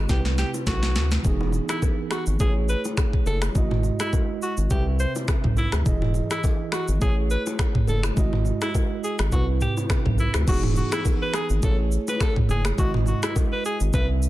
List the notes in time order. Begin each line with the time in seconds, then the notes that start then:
Already playing: G#3 E4 F#4 D#5
0.07 C2 C3 C4 E4 G4, kick, snare, high bongo, low conga, shaker
0.12 B4
0.25 snare
0.38 G4, snare, shaker
0.54 low bongo, shaker
0.67 B1 F#4, kick, snare, high bongo, shaker
0.83 snare
0.95 D2, snare, high bongo, shaker
1.11 snare, low bongo, shaker
1.22 E1 E3 B3 D#4, kick, low conga, shaker
1.27 G#4
1.41 low bongo
1.52 low conga, shaker
1.69 E4, finger snap, cross-stick, shaker
1.82 kick, high bongo, shaker
2.11 F#4, finger snap, cross-stick, shaker
2.27 G#1, shaker
2.38 A1 A3 E4 G#4, kick, low conga, shaker
2.43 B4
2.49 C#5
2.69 B4, shaker
2.85 low bongo, shaker
2.97 finger snap, kick, cross-stick, high bongo, shaker
3.13 kick
3.26 F#1 A4, high bongo, shaker
3.42 finger snap, cross-stick, low bongo, shaker
3.53 G#1 G#3 E4 F#4, kick, low conga, shaker
3.58 D#5
3.71 mid tom, low bongo
3.83 low conga, shaker
4.00 E4, finger snap, cross-stick, shaker
4.13 kick, high bongo, shaker
4.42 F#4, shaker
4.57 G#1, shaker
4.68 C2 C3 C4 G4 B4, kick, low conga, shaker
4.73 E5
5.00 C5, shaker
5.16 low bongo, shaker
5.28 finger snap, kick, cross-stick, high bongo, shaker
5.44 B1, kick, mid tom
5.57 E4, high bongo, shaker
5.72 D2, finger snap, cross-stick, low bongo, shaker
5.84 E1 E3 E4 G#4, kick, low conga, shaker
5.89 D#5
6.02 mid tom, low bongo
6.14 low conga, shaker
6.31 E4, finger snap, cross-stick, shaker
6.44 kick, high bongo, shaker
6.72 F#4, finger snap, cross-stick, shaker
6.88 G#1, shaker
6.99 A1 A3 E4 G#4, kick, low conga, shaker
7.04 C#5
7.30 B4, shaker
7.46 low bongo, shaker
7.59 finger snap, kick, cross-stick, high bongo, shaker
7.75 kick, mid tom
7.87 F#1 A4, high bongo, shaker
8.03 finger snap, cross-stick, low bongo, shaker
8.14 G#1 G#3 E4 F#4, kick, low conga, shaker
8.20 D#5
8.33 mid tom, low bongo
8.45 low conga, shaker
8.62 E4, finger snap, cross-stick, low bongo, shaker
8.75 kick, high bongo, shaker
9.04 G#4, shaker
9.19 G#1, finger snap, cross-stick, shaker
9.30 C2 C3 C4 E4 F#4, kick, low conga, shaker
9.35 B4
9.61 G4, mid tom, shaker
9.77 low bongo, shaker
9.90 finger snap, kick, cross-stick, high bongo, shaker
10.05 B1, kick, mid tom
10.18 E4, high bongo, shaker
10.34 D2, finger snap, cross-stick, low bongo, shaker
10.45 E1 E3 B3 D#4 F#4, kick, crash, low conga, shaker
10.50 G#4
10.63 mid tom, low bongo
10.75 F#4, low conga, shaker
10.92 E4, finger snap, cross-stick, low bongo, shaker
11.05 kick, high bongo, shaker
11.22 B4
11.34 G#4, finger snap, cross-stick, shaker
11.50 G#1, shaker
11.61 A1 A3 E4 G#4 A4, kick, high bongo, low conga, shaker
11.66 C#5
11.92 shaker
12.08 B4, low bongo, shaker
12.20 A4, finger snap, kick, cross-stick, high bongo, shaker
12.36 kick, mid tom
12.49 F#1 G#4, high bongo, shaker
12.65 finger snap, cross-stick, shaker
12.76 G#1 G#3 E4 F#4, kick, low conga, shaker
12.81 D#5
12.94 mid tom, low bongo
13.06 F#4, low conga, shaker
13.23 E4, finger snap, cross-stick, low bongo, shaker
13.36 kick, high bongo, shaker
13.52 B4
13.65 G#4, shaker
13.80 G#1, shaker
13.91 C2 C3 C4 B4, kick, high bongo, low conga, shaker
13.96 E5
14.23 shaker